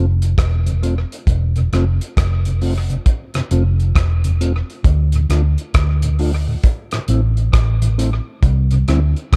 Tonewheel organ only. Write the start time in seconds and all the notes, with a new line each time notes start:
0.67 F2 C3
0.83 A3 C4 F4
1.57 F2 C3
1.73 A3 C4 F4
2.46 F2 C3
2.62 A3 C4 F4
2.90 F2 C3
3.34 F2 C3
3.51 A3 C4 F4
4.24 F2 C3
4.41 A3 C4 F4
5.14 D2 A2
5.30 A3 D4 F4
6.03 D2 A2
6.19 A3 D4 F4
6.47 D2 A2
6.93 A2 E3
7.09 A3 C4 E4
7.82 A2 E3
7.98 A3 C4 E4
8.72 C3
8.88 G3 C4 E4